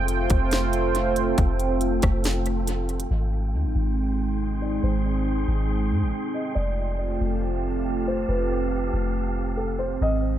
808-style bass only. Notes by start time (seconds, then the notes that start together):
Already playing: F1
0.30 F1
1.38 F1
2.03 F1
3.10 G#1
3.54 D#2
3.65 G#1
3.75 G#1
4.83 G#1
5.48 G#1
5.91 G#2
6.02 G#1
6.56 F1
7.21 F1
8.29 F1
8.93 F1
10.01 G#1